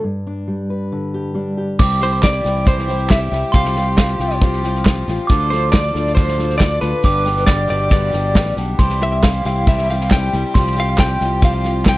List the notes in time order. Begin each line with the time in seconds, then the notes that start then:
0.04 G2
0.27 D4
0.48 G3
0.70 B4
0.92 D3
1.14 G4
1.34 G3 D4
1.57 G4
1.79 C2 C3 E3 G3 C4 E4 G4 D6, kick, snare, crash, shaker
2.01 C4 E4 G4 C5, snare, shaker
2.23 G3 C4 E4 G4 D5, kick, snare, clap, shaker
2.33 shaker
2.44 C2 C4 E4 G4, snare, shaker
2.55 shaker
2.66 C3 G3 C4 E4 G4 C5, kick, snare, shaker
2.77 snare, shaker
2.88 C4 E4 G4, snare, shaker
3.09 G3 C4 E4 G4 E5, kick, snare, clap, shaker
3.21 shaker
3.31 C2 C4 E4 G4, snare, shaker
3.43 shaker
3.52 C2 C3 F3 C4 F4 G4 F5 C6, kick, snare, shaker
3.65 snare, shaker
3.75 C4 F4 G4, snare, shaker
3.97 F3 C4 F4 G4, kick, snare, clap, shaker
4.09 shaker
4.19 C2 C4 F4 G4, snare, shaker
4.30 snare, shaker
4.42 C3 F3 C4 F4 G4, kick, snare, shaker
4.53 snare, shaker
4.63 C4 F4 G4, snare, shaker
4.75 snare
4.85 F3 C4 F4 G4, kick, snare, clap, shaker
4.96 shaker
5.07 A1 C4 F4 G4, snare, shaker
5.19 shaker
5.27 D2 A2 D3 F3 D4 F4 A4 D6, kick, snare, shaker
5.41 shaker
5.50 F4 A4 C5, snare, shaker
5.54 D4
5.72 F3 D4 F4 A4 D5, kick, snare, clap, shaker
5.85 shaker
5.94 D2 D4 F4 A4, snare, shaker
6.05 snare, shaker
6.15 D3 F3 D4 F4 C5, kick, snare, shaker
6.19 A4
6.27 snare, shaker
6.37 D4 F4 A4, snare, shaker
6.50 snare
6.58 F3 D4 F4 D5, kick, snare, clap, shaker
6.62 A4
6.71 shaker
6.81 D2 D4 F4 A4 B4, snare, shaker
6.93 shaker
7.03 G1 G2 B2 D3 G3 B3 D4 G4 D6, kick, snare, shaker
7.14 shaker
7.25 G3 B3 D4 G4, snare, shaker
7.36 snare, shaker
7.47 G3 B3 D4 G4 D5, kick, snare, clap, shaker
7.57 shaker
7.68 G1 B3 D4 G4 D5, snare, shaker
7.72 G3
7.79 shaker
7.90 G2 D3 G3 B3 D4 G4 D5, kick, snare, shaker
8.01 shaker
8.12 G1 G3 B3 D4 G4, snare, shaker
8.24 shaker
8.34 A1 G3 B3 D4 G4, kick, snare, clap, shaker
8.45 snare, shaker
8.56 B1 G3 B3 D4 G4, snare, shaker
8.68 shaker
8.78 C2 C3 E3 G3 C4 E4 G4 C6, kick, snare, shaker
8.89 snare, shaker
9.01 C4 E4 G4 E5, snare, shaker
9.22 G3 C4 E4 G4 F5, kick, snare, clap, shaker
9.35 shaker
9.45 C2 C4 E4 G4 F5, snare, shaker
9.56 shaker
9.67 C3 G3 C4 E4 G4 E5, kick, snare, shaker
9.78 snare, shaker
9.89 C4 E4 G4 F5, snare, shaker
10.00 snare
10.10 G3 C4 E4 G4 G5, kick, snare, clap, shaker
10.22 snare, shaker
10.33 C2 C4 E4 G4, snare, shaker
10.44 shaker
10.54 C2 C3 F3 C4 F4 G4 C6, kick, snare, shaker
10.65 snare, shaker
10.76 C4 F4 G4 F5, snare, shaker
10.98 F3 C4 F4 G4 G5, kick, snare, clap, shaker
11.10 shaker
11.20 C2 C4 F4 G4, snare, shaker
11.32 shaker
11.42 C3 F3 C4 F4 G4 F5, kick, snare, shaker
11.54 shaker
11.64 C4 F4 G4, snare, shaker
11.85 F3 C4 G5, kick, snare, clap, shaker
11.89 F4 G4